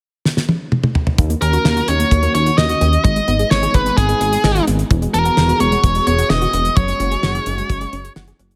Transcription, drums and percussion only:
0.25 snare
0.37 snare
0.49 high tom
0.72 mid tom
0.83 mid tom
0.95 floor tom
1.07 floor tom
1.18 kick, closed hi-hat
1.30 closed hi-hat
1.42 closed hi-hat
1.53 closed hi-hat
1.65 snare
1.77 closed hi-hat
1.88 closed hi-hat
2.00 closed hi-hat
2.11 kick, closed hi-hat
2.23 closed hi-hat
2.35 closed hi-hat
2.46 closed hi-hat
2.58 snare
2.69 closed hi-hat
2.81 closed hi-hat
2.93 closed hi-hat
3.04 kick, closed hi-hat
3.16 closed hi-hat
3.28 closed hi-hat
3.39 closed hi-hat
3.51 snare
3.63 closed hi-hat
3.74 kick, closed hi-hat
3.86 closed hi-hat
3.98 kick, closed hi-hat
4.09 closed hi-hat
4.21 closed hi-hat
4.33 closed hi-hat
4.44 snare
4.56 closed hi-hat
4.67 closed hi-hat
4.79 closed hi-hat
4.91 kick, closed hi-hat
5.02 closed hi-hat
5.14 closed hi-hat
5.25 closed hi-hat
5.37 snare
5.49 closed hi-hat
5.60 closed hi-hat
5.72 closed hi-hat
5.84 kick, closed hi-hat
5.95 closed hi-hat
6.07 closed hi-hat
6.19 closed hi-hat
6.30 snare
6.42 closed hi-hat
6.53 closed hi-hat
6.65 closed hi-hat
6.77 kick, closed hi-hat
6.88 closed hi-hat
7.00 closed hi-hat
7.11 closed hi-hat
7.23 snare
7.35 closed hi-hat
7.46 closed hi-hat
7.58 closed hi-hat
7.70 kick, closed hi-hat
7.81 closed hi-hat
7.93 closed hi-hat
8.05 closed hi-hat
8.16 snare
8.28 closed hi-hat
8.39 closed hi-hat
8.51 closed hi-hat

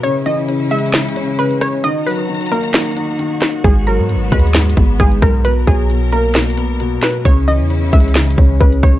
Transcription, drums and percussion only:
0.03 closed hi-hat
0.26 closed hi-hat
0.49 closed hi-hat
0.71 closed hi-hat
0.79 closed hi-hat
0.86 closed hi-hat
0.94 snare, clap, closed hi-hat
1.01 closed hi-hat
1.09 closed hi-hat
1.16 closed hi-hat
1.39 closed hi-hat
1.51 closed hi-hat
1.61 cross-stick, closed hi-hat
1.84 closed hi-hat
2.06 open hi-hat
2.29 closed hi-hat
2.35 closed hi-hat
2.41 closed hi-hat
2.46 closed hi-hat
2.52 closed hi-hat
2.64 closed hi-hat
2.74 snare, clap, closed hi-hat
2.80 closed hi-hat
2.86 closed hi-hat
2.91 closed hi-hat
2.97 closed hi-hat
3.19 closed hi-hat
3.42 cross-stick, snare, clap, closed hi-hat
3.64 kick, closed hi-hat
3.87 closed hi-hat
4.09 closed hi-hat
4.32 kick, closed hi-hat
4.40 closed hi-hat
4.47 closed hi-hat
4.55 snare, clap, closed hi-hat
4.62 closed hi-hat
4.70 closed hi-hat
4.77 kick, closed hi-hat
5.00 kick, closed hi-hat
5.12 closed hi-hat
5.22 kick, cross-stick, closed hi-hat
5.45 closed hi-hat
5.67 kick, closed hi-hat
5.90 closed hi-hat
6.12 closed hi-hat
6.35 snare, clap, closed hi-hat
6.43 closed hi-hat
6.50 closed hi-hat
6.58 closed hi-hat
6.80 closed hi-hat
7.03 cross-stick, snare, clap, closed hi-hat
7.25 kick, closed hi-hat
7.48 closed hi-hat
7.70 closed hi-hat
7.93 kick, closed hi-hat
8.00 closed hi-hat
8.08 closed hi-hat
8.15 snare, clap, closed hi-hat
8.23 closed hi-hat
8.30 closed hi-hat
8.38 kick, closed hi-hat
8.61 kick, closed hi-hat
8.73 closed hi-hat
8.83 kick, cross-stick, closed hi-hat

